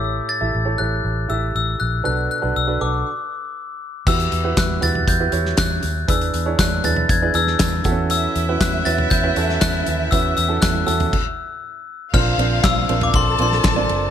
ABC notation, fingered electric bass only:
X:1
M:4/4
L:1/16
Q:1/4=119
K:Amix
V:1 name="Fingered electric bass" clef=bass
A,,,2 z A,,, A,,,2 A,,,2 A,,,2 A,,,2 A,,,2 _B,,,2 | B,,,2 z B,,, B,,,2 B,,,2 z8 | E,,2 E,,2 E,,2 E,,2 E,,2 E,,2 E,,2 _E,,2 | E,,2 E,,2 E,,2 E,,2 E,,2 E,,2 E,,2 E,,2- |
E,,2 E,,2 E,,2 E,,2 E,,2 E,,2 E,,2 _E,,2 | E,,2 E,,2 E,,2 E,,2 z8 | _B,,,2 B,,,2 B,,,2 B,,,2 B,,,2 B,,,2 A,,,2 F,,,2 |]